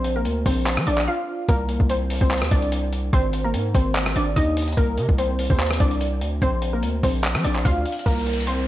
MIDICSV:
0, 0, Header, 1, 5, 480
1, 0, Start_track
1, 0, Tempo, 410959
1, 1736, Time_signature, 4, 2, 24, 8
1, 10135, End_track
2, 0, Start_track
2, 0, Title_t, "Synth pluck"
2, 0, Program_c, 0, 84
2, 0, Note_on_c, 0, 60, 88
2, 0, Note_on_c, 0, 72, 115
2, 161, Note_off_c, 0, 72, 0
2, 166, Note_off_c, 0, 60, 0
2, 185, Note_on_c, 0, 70, 77
2, 193, Note_on_c, 0, 58, 64
2, 289, Note_off_c, 0, 70, 0
2, 293, Note_off_c, 0, 58, 0
2, 535, Note_on_c, 0, 72, 82
2, 544, Note_on_c, 0, 60, 62
2, 986, Note_off_c, 0, 72, 0
2, 991, Note_off_c, 0, 60, 0
2, 1016, Note_on_c, 0, 74, 86
2, 1025, Note_on_c, 0, 62, 65
2, 1239, Note_off_c, 0, 74, 0
2, 1244, Note_off_c, 0, 62, 0
2, 1256, Note_on_c, 0, 77, 93
2, 1265, Note_on_c, 0, 65, 73
2, 1707, Note_off_c, 0, 77, 0
2, 1712, Note_off_c, 0, 65, 0
2, 1736, Note_on_c, 0, 70, 105
2, 1745, Note_on_c, 0, 58, 94
2, 2187, Note_off_c, 0, 70, 0
2, 2192, Note_off_c, 0, 58, 0
2, 2216, Note_on_c, 0, 72, 88
2, 2224, Note_on_c, 0, 60, 65
2, 2561, Note_off_c, 0, 72, 0
2, 2565, Note_off_c, 0, 60, 0
2, 2582, Note_on_c, 0, 72, 87
2, 2591, Note_on_c, 0, 60, 64
2, 2914, Note_off_c, 0, 72, 0
2, 2919, Note_off_c, 0, 60, 0
2, 2934, Note_on_c, 0, 74, 85
2, 2944, Note_on_c, 0, 62, 67
2, 3612, Note_off_c, 0, 74, 0
2, 3617, Note_off_c, 0, 62, 0
2, 3656, Note_on_c, 0, 72, 104
2, 3665, Note_on_c, 0, 60, 82
2, 4001, Note_off_c, 0, 72, 0
2, 4006, Note_off_c, 0, 60, 0
2, 4023, Note_on_c, 0, 70, 79
2, 4032, Note_on_c, 0, 58, 61
2, 4127, Note_off_c, 0, 70, 0
2, 4132, Note_off_c, 0, 58, 0
2, 4375, Note_on_c, 0, 72, 84
2, 4385, Note_on_c, 0, 60, 63
2, 4826, Note_off_c, 0, 72, 0
2, 4832, Note_off_c, 0, 60, 0
2, 4856, Note_on_c, 0, 74, 85
2, 4866, Note_on_c, 0, 62, 62
2, 5079, Note_off_c, 0, 74, 0
2, 5084, Note_off_c, 0, 62, 0
2, 5095, Note_on_c, 0, 75, 91
2, 5105, Note_on_c, 0, 63, 77
2, 5546, Note_off_c, 0, 75, 0
2, 5551, Note_off_c, 0, 63, 0
2, 5574, Note_on_c, 0, 70, 110
2, 5583, Note_on_c, 0, 58, 88
2, 6026, Note_off_c, 0, 70, 0
2, 6031, Note_off_c, 0, 58, 0
2, 6055, Note_on_c, 0, 72, 88
2, 6064, Note_on_c, 0, 60, 70
2, 6400, Note_off_c, 0, 72, 0
2, 6405, Note_off_c, 0, 60, 0
2, 6423, Note_on_c, 0, 72, 86
2, 6432, Note_on_c, 0, 60, 67
2, 6754, Note_off_c, 0, 72, 0
2, 6759, Note_off_c, 0, 60, 0
2, 6775, Note_on_c, 0, 74, 88
2, 6785, Note_on_c, 0, 62, 65
2, 7452, Note_off_c, 0, 74, 0
2, 7457, Note_off_c, 0, 62, 0
2, 7497, Note_on_c, 0, 72, 114
2, 7505, Note_on_c, 0, 60, 87
2, 7841, Note_off_c, 0, 72, 0
2, 7846, Note_off_c, 0, 60, 0
2, 7863, Note_on_c, 0, 70, 76
2, 7873, Note_on_c, 0, 58, 61
2, 7968, Note_off_c, 0, 70, 0
2, 7973, Note_off_c, 0, 58, 0
2, 8215, Note_on_c, 0, 72, 81
2, 8223, Note_on_c, 0, 60, 65
2, 8666, Note_off_c, 0, 72, 0
2, 8671, Note_off_c, 0, 60, 0
2, 8694, Note_on_c, 0, 74, 83
2, 8704, Note_on_c, 0, 62, 62
2, 8918, Note_off_c, 0, 74, 0
2, 8923, Note_off_c, 0, 62, 0
2, 8934, Note_on_c, 0, 77, 90
2, 8944, Note_on_c, 0, 65, 72
2, 9386, Note_off_c, 0, 77, 0
2, 9391, Note_off_c, 0, 65, 0
2, 9414, Note_on_c, 0, 70, 103
2, 9423, Note_on_c, 0, 58, 91
2, 9866, Note_off_c, 0, 70, 0
2, 9871, Note_off_c, 0, 58, 0
2, 9894, Note_on_c, 0, 72, 84
2, 9904, Note_on_c, 0, 60, 66
2, 10135, Note_off_c, 0, 60, 0
2, 10135, Note_off_c, 0, 72, 0
2, 10135, End_track
3, 0, Start_track
3, 0, Title_t, "808-style bass"
3, 0, Program_c, 1, 38
3, 0, Note_on_c, 1, 34, 107
3, 295, Note_on_c, 1, 38, 105
3, 313, Note_off_c, 1, 34, 0
3, 523, Note_off_c, 1, 38, 0
3, 535, Note_on_c, 1, 34, 105
3, 902, Note_on_c, 1, 53, 97
3, 920, Note_off_c, 1, 34, 0
3, 1010, Note_off_c, 1, 53, 0
3, 1015, Note_on_c, 1, 34, 103
3, 1255, Note_off_c, 1, 34, 0
3, 1735, Note_on_c, 1, 36, 115
3, 2087, Note_off_c, 1, 36, 0
3, 2101, Note_on_c, 1, 36, 104
3, 2562, Note_off_c, 1, 36, 0
3, 2583, Note_on_c, 1, 36, 104
3, 2822, Note_on_c, 1, 39, 99
3, 2840, Note_off_c, 1, 36, 0
3, 2929, Note_off_c, 1, 39, 0
3, 2936, Note_on_c, 1, 36, 101
3, 3627, Note_off_c, 1, 36, 0
3, 3655, Note_on_c, 1, 32, 105
3, 4136, Note_on_c, 1, 44, 100
3, 4153, Note_off_c, 1, 32, 0
3, 4364, Note_off_c, 1, 44, 0
3, 4375, Note_on_c, 1, 32, 104
3, 4836, Note_off_c, 1, 32, 0
3, 4856, Note_on_c, 1, 32, 105
3, 5086, Note_off_c, 1, 32, 0
3, 5097, Note_on_c, 1, 39, 106
3, 5557, Note_off_c, 1, 39, 0
3, 5575, Note_on_c, 1, 36, 105
3, 5816, Note_on_c, 1, 48, 104
3, 5833, Note_off_c, 1, 36, 0
3, 5936, Note_off_c, 1, 48, 0
3, 5942, Note_on_c, 1, 36, 104
3, 6403, Note_off_c, 1, 36, 0
3, 6423, Note_on_c, 1, 39, 104
3, 6761, Note_off_c, 1, 39, 0
3, 6777, Note_on_c, 1, 36, 108
3, 7255, Note_on_c, 1, 38, 95
3, 7273, Note_off_c, 1, 36, 0
3, 7483, Note_off_c, 1, 38, 0
3, 7496, Note_on_c, 1, 34, 105
3, 7976, Note_on_c, 1, 38, 101
3, 7994, Note_off_c, 1, 34, 0
3, 8204, Note_off_c, 1, 38, 0
3, 8215, Note_on_c, 1, 34, 105
3, 8583, Note_on_c, 1, 53, 99
3, 8600, Note_off_c, 1, 34, 0
3, 8690, Note_off_c, 1, 53, 0
3, 8696, Note_on_c, 1, 34, 102
3, 8926, Note_off_c, 1, 34, 0
3, 8936, Note_on_c, 1, 38, 103
3, 9166, Note_off_c, 1, 38, 0
3, 9415, Note_on_c, 1, 36, 106
3, 10135, Note_off_c, 1, 36, 0
3, 10135, End_track
4, 0, Start_track
4, 0, Title_t, "Downlifter"
4, 0, Program_c, 2, 103
4, 9415, Note_on_c, 2, 60, 85
4, 10135, Note_off_c, 2, 60, 0
4, 10135, End_track
5, 0, Start_track
5, 0, Title_t, "Drums"
5, 51, Note_on_c, 9, 42, 81
5, 167, Note_off_c, 9, 42, 0
5, 293, Note_on_c, 9, 42, 87
5, 410, Note_off_c, 9, 42, 0
5, 535, Note_on_c, 9, 36, 100
5, 535, Note_on_c, 9, 46, 70
5, 651, Note_off_c, 9, 46, 0
5, 652, Note_off_c, 9, 36, 0
5, 775, Note_on_c, 9, 39, 102
5, 777, Note_on_c, 9, 42, 96
5, 892, Note_off_c, 9, 39, 0
5, 894, Note_off_c, 9, 42, 0
5, 902, Note_on_c, 9, 37, 100
5, 1014, Note_on_c, 9, 42, 81
5, 1019, Note_off_c, 9, 37, 0
5, 1131, Note_off_c, 9, 42, 0
5, 1142, Note_on_c, 9, 39, 70
5, 1259, Note_off_c, 9, 39, 0
5, 1735, Note_on_c, 9, 36, 125
5, 1735, Note_on_c, 9, 42, 71
5, 1852, Note_off_c, 9, 36, 0
5, 1852, Note_off_c, 9, 42, 0
5, 1970, Note_on_c, 9, 42, 79
5, 2087, Note_off_c, 9, 42, 0
5, 2101, Note_on_c, 9, 36, 92
5, 2213, Note_on_c, 9, 42, 86
5, 2218, Note_off_c, 9, 36, 0
5, 2330, Note_off_c, 9, 42, 0
5, 2454, Note_on_c, 9, 46, 70
5, 2571, Note_off_c, 9, 46, 0
5, 2582, Note_on_c, 9, 36, 89
5, 2695, Note_on_c, 9, 39, 104
5, 2695, Note_on_c, 9, 42, 82
5, 2699, Note_off_c, 9, 36, 0
5, 2775, Note_off_c, 9, 42, 0
5, 2775, Note_on_c, 9, 42, 81
5, 2812, Note_off_c, 9, 39, 0
5, 2823, Note_on_c, 9, 37, 101
5, 2856, Note_off_c, 9, 42, 0
5, 2856, Note_on_c, 9, 42, 80
5, 2936, Note_off_c, 9, 42, 0
5, 2936, Note_on_c, 9, 36, 101
5, 2936, Note_on_c, 9, 42, 77
5, 2940, Note_off_c, 9, 37, 0
5, 3053, Note_off_c, 9, 36, 0
5, 3053, Note_off_c, 9, 42, 0
5, 3064, Note_on_c, 9, 42, 44
5, 3177, Note_off_c, 9, 42, 0
5, 3177, Note_on_c, 9, 42, 100
5, 3294, Note_off_c, 9, 42, 0
5, 3418, Note_on_c, 9, 42, 74
5, 3534, Note_off_c, 9, 42, 0
5, 3656, Note_on_c, 9, 36, 127
5, 3656, Note_on_c, 9, 42, 72
5, 3772, Note_off_c, 9, 36, 0
5, 3773, Note_off_c, 9, 42, 0
5, 3891, Note_on_c, 9, 42, 82
5, 4007, Note_off_c, 9, 42, 0
5, 4133, Note_on_c, 9, 42, 85
5, 4250, Note_off_c, 9, 42, 0
5, 4374, Note_on_c, 9, 42, 99
5, 4375, Note_on_c, 9, 36, 97
5, 4491, Note_off_c, 9, 42, 0
5, 4492, Note_off_c, 9, 36, 0
5, 4615, Note_on_c, 9, 39, 105
5, 4617, Note_on_c, 9, 42, 98
5, 4732, Note_off_c, 9, 39, 0
5, 4734, Note_off_c, 9, 42, 0
5, 4744, Note_on_c, 9, 37, 98
5, 4856, Note_on_c, 9, 42, 83
5, 4861, Note_off_c, 9, 37, 0
5, 4973, Note_off_c, 9, 42, 0
5, 5096, Note_on_c, 9, 36, 99
5, 5097, Note_on_c, 9, 42, 98
5, 5213, Note_off_c, 9, 36, 0
5, 5214, Note_off_c, 9, 42, 0
5, 5336, Note_on_c, 9, 42, 63
5, 5338, Note_on_c, 9, 46, 59
5, 5399, Note_off_c, 9, 42, 0
5, 5399, Note_on_c, 9, 42, 62
5, 5454, Note_off_c, 9, 46, 0
5, 5463, Note_off_c, 9, 42, 0
5, 5463, Note_on_c, 9, 42, 60
5, 5519, Note_off_c, 9, 42, 0
5, 5519, Note_on_c, 9, 42, 61
5, 5575, Note_off_c, 9, 42, 0
5, 5575, Note_on_c, 9, 36, 124
5, 5575, Note_on_c, 9, 42, 75
5, 5692, Note_off_c, 9, 36, 0
5, 5692, Note_off_c, 9, 42, 0
5, 5811, Note_on_c, 9, 42, 81
5, 5928, Note_off_c, 9, 42, 0
5, 5942, Note_on_c, 9, 36, 96
5, 6054, Note_on_c, 9, 42, 87
5, 6059, Note_off_c, 9, 36, 0
5, 6171, Note_off_c, 9, 42, 0
5, 6294, Note_on_c, 9, 46, 69
5, 6411, Note_off_c, 9, 46, 0
5, 6423, Note_on_c, 9, 36, 91
5, 6535, Note_on_c, 9, 39, 104
5, 6535, Note_on_c, 9, 42, 80
5, 6540, Note_off_c, 9, 36, 0
5, 6616, Note_off_c, 9, 42, 0
5, 6616, Note_on_c, 9, 42, 83
5, 6652, Note_off_c, 9, 39, 0
5, 6664, Note_on_c, 9, 37, 95
5, 6695, Note_off_c, 9, 42, 0
5, 6695, Note_on_c, 9, 42, 82
5, 6776, Note_off_c, 9, 42, 0
5, 6776, Note_on_c, 9, 42, 80
5, 6777, Note_on_c, 9, 36, 100
5, 6781, Note_off_c, 9, 37, 0
5, 6892, Note_off_c, 9, 42, 0
5, 6893, Note_off_c, 9, 36, 0
5, 6903, Note_on_c, 9, 42, 46
5, 7017, Note_off_c, 9, 42, 0
5, 7017, Note_on_c, 9, 42, 96
5, 7134, Note_off_c, 9, 42, 0
5, 7257, Note_on_c, 9, 42, 74
5, 7374, Note_off_c, 9, 42, 0
5, 7496, Note_on_c, 9, 36, 123
5, 7496, Note_on_c, 9, 42, 70
5, 7613, Note_off_c, 9, 36, 0
5, 7613, Note_off_c, 9, 42, 0
5, 7731, Note_on_c, 9, 42, 79
5, 7848, Note_off_c, 9, 42, 0
5, 7974, Note_on_c, 9, 42, 86
5, 8091, Note_off_c, 9, 42, 0
5, 8214, Note_on_c, 9, 46, 72
5, 8215, Note_on_c, 9, 36, 96
5, 8331, Note_off_c, 9, 46, 0
5, 8332, Note_off_c, 9, 36, 0
5, 8455, Note_on_c, 9, 39, 108
5, 8457, Note_on_c, 9, 42, 97
5, 8572, Note_off_c, 9, 39, 0
5, 8574, Note_off_c, 9, 42, 0
5, 8584, Note_on_c, 9, 37, 97
5, 8696, Note_on_c, 9, 42, 81
5, 8701, Note_off_c, 9, 37, 0
5, 8812, Note_off_c, 9, 42, 0
5, 8823, Note_on_c, 9, 39, 66
5, 8936, Note_on_c, 9, 36, 100
5, 8937, Note_on_c, 9, 42, 96
5, 8940, Note_off_c, 9, 39, 0
5, 9053, Note_off_c, 9, 36, 0
5, 9054, Note_off_c, 9, 42, 0
5, 9175, Note_on_c, 9, 42, 74
5, 9255, Note_off_c, 9, 42, 0
5, 9255, Note_on_c, 9, 42, 61
5, 9335, Note_off_c, 9, 42, 0
5, 9335, Note_on_c, 9, 42, 44
5, 9415, Note_off_c, 9, 42, 0
5, 9415, Note_on_c, 9, 36, 123
5, 9415, Note_on_c, 9, 42, 73
5, 9532, Note_off_c, 9, 36, 0
5, 9532, Note_off_c, 9, 42, 0
5, 9655, Note_on_c, 9, 42, 61
5, 9735, Note_off_c, 9, 42, 0
5, 9735, Note_on_c, 9, 42, 62
5, 9815, Note_off_c, 9, 42, 0
5, 9815, Note_on_c, 9, 42, 63
5, 9893, Note_off_c, 9, 42, 0
5, 9893, Note_on_c, 9, 42, 83
5, 10010, Note_off_c, 9, 42, 0
5, 10135, End_track
0, 0, End_of_file